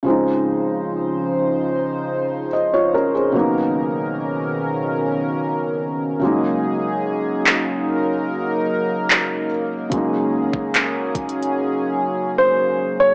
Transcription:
0.03 felt piano C#3 F3 G#3, analog synth pad C#3 F3 D#4 C5
0.08 felt piano C4 D#4
2.53 felt piano D#5
2.74 felt piano F4 C#5
2.94 felt piano C#4 A#4
3.15 felt piano C4 G#4
3.32 analog synth pad B2 D#3 C#4 A#4, felt piano C#3 F#3 A#3
3.37 felt piano B3 D#4
6.20 felt piano C#3 F#3 G#3, analog synth pad F#3 A#3 D#4 G#4
6.25 felt piano A#3 D#4
7.47 clap
7.86 analog synth pad A#4
9.10 clap
9.90 felt piano C#3 F#3 G#3, analog synth pad F#3 C#4 G#4, kick, closed hi-hat
9.94 felt piano A#3 D#4
10.54 kick
10.74 clap, closed hi-hat
11.15 kick, closed hi-hat
11.29 closed hi-hat
11.43 closed hi-hat
12.38 grand piano C5
13.00 grand piano C#5

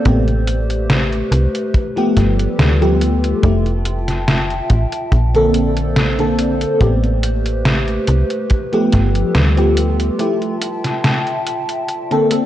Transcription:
Already playing: ambient pad C5
0.05 fm bass A1, fm electric piano C3 A3 B3 G4, ambient pad A3 G4 B4, kick, closed hi-hat
0.28 closed hi-hat
0.47 closed hi-hat
0.70 closed hi-hat
0.90 snare, closed hi-hat
1.13 closed hi-hat
1.32 fm bass C2, closed hi-hat
1.55 closed hi-hat
1.74 ambient pad G3 F4 A4, kick, closed hi-hat
1.96 fm electric piano F3 A3 B3 G4, closed hi-hat
2.17 fm bass G1, kick, snare, closed hi-hat
2.39 closed hi-hat
2.59 fm bass D2, snare, closed hi-hat
2.81 fm electric piano F3 A3 B3 G4, closed hi-hat
3.01 closed hi-hat
3.24 closed hi-hat
3.42 fm bass F1, fm electric piano F3 A3 E4 G4, ambient pad E5 G5 A5, kick, closed hi-hat
3.66 closed hi-hat
3.85 closed hi-hat
4.08 snare, closed hi-hat
4.28 snare, closed hi-hat
4.50 closed hi-hat
4.70 fm bass A1, kick, closed hi-hat
4.92 closed hi-hat
5.12 fm bass A#1, ambient pad A#3 A4 C5 D5, kick, closed hi-hat
5.34 fm electric piano D3 A#3 C4 A4, closed hi-hat
5.54 closed hi-hat
5.77 closed hi-hat
5.96 snare, closed hi-hat
6.19 fm electric piano D3 A#3 C4 A4, closed hi-hat
6.39 closed hi-hat
6.61 closed hi-hat
6.81 fm bass A1, fm electric piano C3 A3 B3 G4, ambient pad A3 G4 B4, kick, closed hi-hat
7.04 closed hi-hat
7.23 closed hi-hat
7.46 closed hi-hat
7.65 snare, closed hi-hat
7.88 closed hi-hat
8.08 fm bass C2, closed hi-hat
8.30 closed hi-hat
8.50 ambient pad G3 F4 A4, kick, closed hi-hat
8.73 fm electric piano F3 A3 B3 G4, closed hi-hat
8.92 fm bass G1, kick, snare, closed hi-hat
9.15 closed hi-hat
9.35 fm bass D2, snare, closed hi-hat
9.57 fm electric piano F3 A3 B3 G4, closed hi-hat
9.77 closed hi-hat
10.00 closed hi-hat
10.19 fm electric piano F3 A3 E4 G4, ambient pad E5 G5 A5, closed hi-hat
10.42 closed hi-hat
10.62 closed hi-hat
10.84 snare, closed hi-hat
11.04 snare, closed hi-hat
11.27 closed hi-hat
11.47 closed hi-hat
11.69 closed hi-hat
11.88 ambient pad A#3 A4 C5 D5, closed hi-hat
12.11 fm electric piano D3 A#3 C4 A4, closed hi-hat
12.30 fm electric piano D3 A#3 C4 A4, closed hi-hat

